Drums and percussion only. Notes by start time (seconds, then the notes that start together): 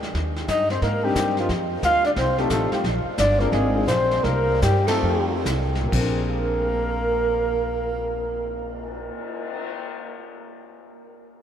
0.03 snare
0.15 brush sweep, kick, snare
0.36 snare
0.48 kick, snare, hi-hat pedal
0.70 snare
0.82 brush sweep, kick, snare
1.15 kick, snare, hi-hat pedal
1.37 snare
1.49 brush sweep, kick, snare
1.83 kick, snare, hi-hat pedal
2.04 snare
2.16 brush sweep, kick, snare
2.38 snare
2.50 kick, snare, hi-hat pedal
2.72 snare
2.84 brush sweep, kick, snare
3.18 kick, snare, hi-hat pedal
3.40 snare
3.53 brush sweep, kick, snare
3.88 kick, snare, hi-hat pedal
4.11 snare
4.24 brush sweep, kick, snare
4.62 kick, snare, hi-hat pedal
4.88 snare, ride
5.03 brush sweep
5.46 kick, snare, hi-hat pedal
5.75 snare
5.92 kick, crash
6.23 cymbal swell